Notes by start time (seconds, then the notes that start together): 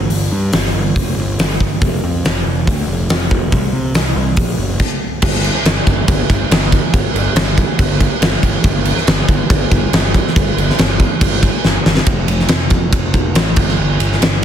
0.10 G1, open hi-hat
0.32 G2
0.53 G1, snare, open hi-hat
0.65 snare
0.74 G1
0.96 kick, open hi-hat
1.17 G1
1.39 G1, snare, open hi-hat
1.60 G1, kick
1.81 F1, kick, open hi-hat
2.03 F2
2.25 F1, snare, open hi-hat
2.46 F1
2.67 D2, kick, open hi-hat
2.87 F1
3.09 F1, snare, open hi-hat
3.31 F1, kick
3.52 C2, kick, open hi-hat
3.73 C3
3.94 C2, snare, open hi-hat
4.16 C2
4.37 A#1, kick, open hi-hat
4.57 F#1
4.80 kick, crash
5.22 G1, kick, crash
5.44 crash
5.65 G1, snare, crash
5.87 G1, kick, crash
6.08 G1, kick, crash
6.30 G1, kick, crash
6.51 G1, snare, crash
6.72 kick, crash
6.93 G1, kick, crash
7.14 G1, crash
7.35 G1, snare, crash
7.58 kick, crash
7.79 G1, kick, crash
8.01 kick, crash
8.22 G1, snare, crash
8.43 G1, kick, crash
8.64 G1, kick, crash
8.85 crash
8.97 snare
9.07 G1, snare, crash
9.28 G1, kick, crash
9.50 G1, kick, crash
9.72 G1, kick, crash
9.93 G1, snare, crash
10.14 kick, crash
10.27 snare
10.36 G1, kick, crash
10.57 G1, crash
10.70 snare
10.79 G1, snare, crash
10.99 kick, crash
11.21 G1, kick, crash
11.43 kick, crash
11.64 G1, snare
11.86 G1, snare
11.97 snare
12.07 F1, kick, ride
12.27 F1, ride
12.39 snare
12.49 F1, snare, ride
12.70 F1, kick, ride
12.93 F1, kick, ride
13.14 kick, ride
13.35 A1, snare, ride
13.56 G1, kick, crash
13.69 snare
13.79 G1
14.00 G1, ride
14.12 snare
14.21 G1, snare, ride